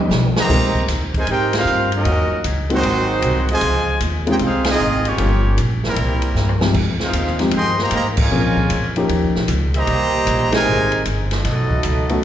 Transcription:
Already playing: trombone section G3 C#4 D#4 B4
0.10 upright bass B1, snare, hi-hat pedal
0.36 trombone section D#3 G3 A#3, trumpet section G4 C5 D#5 A#5, snare
0.49 upright bass C2, grand piano G#3 C4 D#4 G4 A#4, kick, crash
0.75 kick
0.88 upright bass D#2, snare, hi-hat pedal, ride
1.14 trombone section C3 D#3 G#3, trumpet section D#4 A#4 C5 G#5, kick, ride
1.27 upright bass G#2, trombone section C4 D#4 G4, trumpet section D#4 A#4 C5 G5, kick, ride
1.53 trombone section G3 C4 F4, trumpet section D#4 A#4 C5 F5, snare, ride
1.65 upright bass G2, hi-hat pedal
1.92 trombone section F#3 A#3 D#4, ride
1.96 trumpet section C#4 F#4 A#4 D#5
2.05 upright bass D#2, kick, ride
2.31 muted upright bass stroke
2.44 upright bass C#2, kick, hi-hat pedal, ride
2.70 trombone section D#3 F#3 C4, grand piano G#3 A#3 C4 D#4 F#4, trumpet section G#3 D#4 F#4 C5, ride
2.82 upright bass G#1, kick, ride
3.22 upright bass C2, kick, hi-hat pedal, ride
3.49 trombone section C3 F3 G#3, trumpet section F4 C5 D#5 G#5, ride
3.61 upright bass C#2, kick, ride
4.00 upright bass D#2, kick, hi-hat pedal, ride
4.26 grand piano G#3 C4 C#4 D#4 F4, trombone section G4, trumpet section G#4 C5 G5, ride
4.31 trumpet section D#4
4.39 upright bass C2, trombone section G#3 C4 F4, kick, ride
4.44 trumpet section D#4 G#4 C5 F5
4.64 trombone section G#3 C4, snare, ride
4.69 trumpet section C4 F4 G#4 D#5, trombone section D#4
4.79 upright bass G#1, hi-hat pedal
5.05 trombone section F3 A#3 C#4, trumpet section A#3 F4 G4 C#5, ride
5.18 upright bass G1, grand piano G3 A#3 C#4 F4 G4, kick, ride
5.57 upright bass A#1, kick, hi-hat pedal, ride
5.84 trombone section E3 G3 A#3, trumpet section G3 C4 E4 A#4, snare
5.96 upright bass C2, kick, ride
6.22 ride
6.35 upright bass G2, snare, hi-hat pedal
6.49 floor tom
6.61 grand piano F3 G#3 C4 D#4 G4, snare
6.74 upright bass F2, kick, crash
7.00 trombone section G#3 C4 F4, trumpet section D#4 G#4 C5 F5, snare
7.13 upright bass D#2, kick, hi-hat pedal, ride
7.27 snare
7.39 grand piano F3 G#3 C4 D#4 G4, snare, ride
7.51 upright bass G2, trombone section D#3 G#3 C4, trumpet section G#4, kick, ride
7.55 trumpet section D#5 G5 C6
7.78 trombone section A#3, trumpet section G4 C5 D#5 A#5, snare
7.91 upright bass G#2, trombone section A#3, trumpet section G4, kick, hi-hat pedal, ride
7.95 trumpet section C5 D#5 A#5
8.17 trombone section C#3 F3 G#3, kick, crash
8.21 trumpet section F4 A#4 C#5 G#5
8.31 upright bass A#2, grand piano F3 A#3 C4 C#4 G#4
8.57 kick
8.70 upright bass F2, kick, hi-hat pedal, ride
8.96 grand piano F3 A#3 C#4 D#4 G4, ride
9.09 upright bass D#2, kick, ride
9.23 upright bass C#2
9.35 upright bass A#1, snare
9.48 upright bass C#2, kick, hi-hat pedal, ride
9.74 trombone section D#3 G3 A#3, trumpet section G4 C5 D#5 A#5, ride
9.87 upright bass C2, kick, ride
10.27 upright bass A#1, kick, hi-hat pedal, ride
10.51 trombone section C3 D#3 G#3, grand piano G#3 A#3 C4 D#4 G4, trumpet section D#4 A#4 C5 G#5, snare, ride
10.66 upright bass G#1
10.92 ride
11.05 upright bass G1, kick, hi-hat pedal, ride
11.29 trombone section F#3 A3 D#4, trumpet section B3 F#4 A4 D#5, snare, ride
11.44 upright bass B1, kick, snare, ride
11.71 kick
11.83 upright bass C#2, hi-hat pedal, ride
12.09 grand piano A3 B3 C#4 D#4 F#4, ride

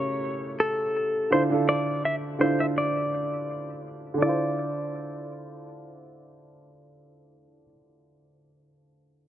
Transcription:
Already playing: grand piano C#3 A3 C#4 E4 G4 A#4, clean electric guitar C#5
0.60 clean electric guitar A4
1.30 grand piano D3 D4 E4 F4 C5, clean electric guitar C5
1.50 grand piano D3 D4 E4 F4 A4
1.69 clean electric guitar D5
2.05 clean electric guitar E5
2.39 grand piano D3 D4 E4 F4 C5, clean electric guitar C5
2.60 clean electric guitar E5
2.78 clean electric guitar D5
4.14 grand piano D3 D4
4.21 grand piano E4 F4, clean electric guitar D5
4.29 grand piano C5

